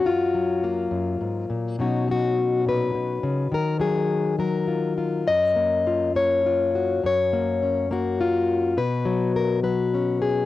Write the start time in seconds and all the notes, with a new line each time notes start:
Already playing: F#4
0.04 F#2 F4
0.35 F#3
0.64 A#3
0.91 F#2
1.21 G#2
1.50 A#2
1.79 B2 F#3 C#4 D#4 F#4
2.08 F#3 F#4
2.39 C#4
2.66 A#2 B4
2.95 B2
3.23 C#3
3.52 D#3 A#4
3.80 F#3 G#4
4.39 F#3 A#4
4.68 F4
4.98 F4
5.27 F#2 D#5
5.56 A#3
5.87 F4
6.15 A#3 C#5
6.46 F4
6.75 F#4
7.03 F#2 C#5
7.33 A#3
7.63 C#4
7.91 A#3 F#4
8.21 F4
8.77 B2 B4
9.05 F#3
9.36 A#4
9.63 F#3 B4
9.94 C#4
10.22 G#4